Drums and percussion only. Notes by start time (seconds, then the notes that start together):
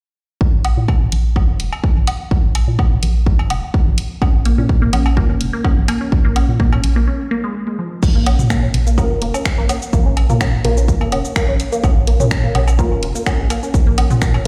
0.41 kick
0.65 closed hi-hat, low woodblock
0.88 kick, cowbell
1.12 closed hi-hat
1.36 kick, low woodblock
1.60 closed hi-hat
1.73 cowbell
1.84 kick
2.07 closed hi-hat, low woodblock
2.31 kick
2.55 closed hi-hat, cowbell
2.79 kick, low woodblock
3.03 closed hi-hat
3.26 kick
3.39 cowbell
3.50 closed hi-hat, low woodblock
3.74 kick
3.98 closed hi-hat
4.22 kick, cowbell, low woodblock
4.45 closed hi-hat
4.69 kick
4.93 closed hi-hat, low woodblock
5.06 cowbell
5.17 kick
5.41 closed hi-hat
5.64 kick, low woodblock
5.88 closed hi-hat, cowbell
6.12 kick
6.36 closed hi-hat, low woodblock
6.60 kick
6.73 cowbell
6.84 closed hi-hat
8.03 kick, crash, cabasa
8.26 closed hi-hat, low woodblock
8.39 mid tom, cabasa
8.50 finger snap, kick, cowbell, cabasa
8.74 closed hi-hat, mid tom
8.87 cabasa
8.98 kick, cabasa, low woodblock
9.22 closed hi-hat
9.34 cowbell, cabasa
9.45 finger snap, kick, cabasa
9.69 closed hi-hat, cabasa, low woodblock
9.82 cabasa
9.93 kick, cabasa
10.17 closed hi-hat, cowbell
10.30 mid tom, cabasa
10.41 finger snap, kick, cabasa, low woodblock
10.65 closed hi-hat, mid tom
10.77 cabasa
10.88 kick, cabasa
11.01 cowbell
11.12 closed hi-hat, low woodblock
11.25 cabasa
11.36 finger snap, kick, cabasa
11.60 closed hi-hat, cabasa
11.72 cabasa
11.84 kick, cowbell, cabasa, low woodblock
12.07 closed hi-hat
12.20 mid tom, cabasa
12.31 finger snap, kick, cabasa
12.55 closed hi-hat, mid tom, low woodblock
12.68 cowbell, cabasa
12.79 kick, cabasa
13.03 closed hi-hat
13.15 cabasa
13.26 finger snap, kick, cabasa, low woodblock
13.50 closed hi-hat, cowbell, cabasa
13.63 cabasa
13.74 kick, cabasa
13.98 closed hi-hat, low woodblock
14.10 mid tom, cabasa
14.22 finger snap, kick, cabasa
14.34 cowbell